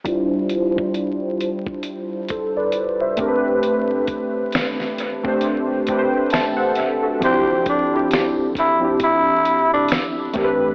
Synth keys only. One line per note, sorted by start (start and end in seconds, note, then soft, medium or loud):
0.04 0.52 G3 medium
0.04 0.52 D4 medium
0.04 0.53 E4 medium
0.04 0.54 F4 medium
0.09 0.54 C5 loud
0.75 1.99 G3 medium
0.75 1.99 D4 medium
0.75 2.00 E4 medium
0.75 2.00 F4 medium
0.80 1.87 C5 medium
2.30 2.55 A4 soft
2.30 2.54 C5 medium
2.57 2.99 B4 medium
2.57 2.99 D5 medium
3.01 3.43 C5 soft
3.01 3.43 E5 medium
3.17 4.63 A3 medium
3.17 4.63 C4 medium
3.17 4.64 D4 medium
3.17 4.64 G4 medium
3.22 3.28 A#4 medium
3.28 4.68 B4 loud
5.23 5.70 A3 medium
5.23 5.70 C4 medium
5.23 5.71 D4 medium
5.23 5.72 G4 medium
5.28 5.72 C5 medium
5.88 6.81 A3 medium
5.88 6.82 C4 medium
5.88 6.82 D4 medium
5.88 6.34 G4 medium
5.88 6.31 G5 medium
5.92 5.97 B4 medium
5.98 6.32 C5 medium
6.33 6.55 C5 medium
6.33 6.57 E5 medium
6.33 6.56 A5 medium
6.56 7.00 A4 medium
6.56 7.00 C5 medium
6.56 6.75 F#5 medium
6.77 7.19 E5 medium
7.03 7.46 F#4 soft
7.03 7.45 A4 medium
7.20 7.68 F3 medium
7.20 7.69 C4 medium
7.20 7.69 D4 medium
7.20 7.70 E4 medium
7.25 7.70 G4 loud
7.91 8.52 F3 medium
7.91 8.52 C4 medium
7.91 8.53 D4 medium
7.91 8.53 E4 medium
7.96 8.54 G4 medium
8.80 10.04 F3 medium
8.80 10.04 C4 medium
8.80 10.05 D4 medium
8.80 10.05 E4 medium
8.84 10.06 G4 medium
10.33 10.75 A3 medium
10.33 10.75 C4 medium
10.33 10.75 D4 medium
10.33 10.75 G4 medium
10.38 10.44 A#4 medium
10.44 10.75 B4 loud